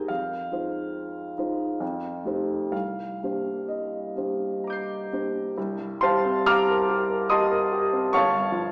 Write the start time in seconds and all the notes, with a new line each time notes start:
Already playing: G#3 D#4 G4 A#4 G#5 D#6 G6 A#6
0.08 F2 F5
0.51 G#3 D#4 F4 C5
1.38 G#3 D#4 F4 C5
1.80 F2
2.25 A3 D#4 G4 C5
2.72 C2 F5
3.23 A#3 D4 G4 C5
3.68 D#5
4.16 A#3 D4 G4 C5
4.64 A#5 D6
4.70 G6 C7
5.12 A#3 D4 G4 C5
5.58 C2
5.77 G2
6.01 G3 C5 F5 A5 C6
6.25 C4
6.46 G4 F5 A#5 D6 F6
6.70 A#4
6.89 G4
7.10 A#4
7.30 G4 D#5 A5 C6 D#6
7.51 A#4
7.72 G4
7.93 C4
8.13 G1 C#5 F5 A5 C#6
8.33 G2
8.52 F3